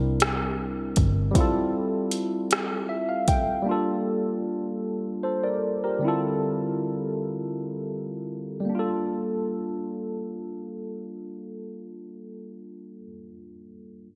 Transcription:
Already playing: C2 G3 C4 D4 E4 A#4
0.20 cross-stick, closed hi-hat
0.96 G1, kick, closed hi-hat
1.31 G3 C4
1.35 E4 F4, kick, closed hi-hat
1.40 A4
2.11 closed hi-hat
2.51 cross-stick, closed hi-hat
2.89 E5
3.09 F5
3.28 G5, kick, closed hi-hat
3.62 G3 A#3
3.66 D4 F4
3.71 A4
5.23 A4 C5
5.43 A#4 D5
5.84 G4 A#4
5.99 D3 G3 C4
6.04 E4 F4 A4
8.60 G3
8.65 A#3
8.69 D4
8.75 F4
8.79 A4

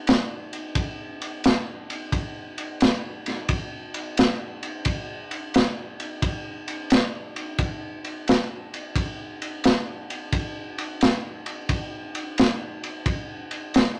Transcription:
0.07 snare, ride
0.53 ride
0.75 kick, ride
1.22 ride
1.44 snare, ride
1.90 ride
2.12 kick, ride
2.58 ride
2.80 snare, ride
3.26 snare, ride
3.49 kick, ride
3.94 ride
4.17 snare, ride
4.63 ride
4.85 kick, ride
5.31 ride
5.54 snare, ride
6.00 ride
6.22 kick, ride
6.68 ride
6.90 snare, ride
7.36 ride
7.58 kick, ride
8.04 ride
8.28 snare, ride
8.74 ride
8.96 kick, ride
9.42 ride
9.64 snare, ride
10.10 ride
10.32 kick, ride
10.78 ride
11.01 snare, ride
11.46 ride
11.69 kick, ride
12.15 ride
12.38 snare, ride
12.83 ride
13.06 kick, ride
13.51 ride
13.74 snare, ride

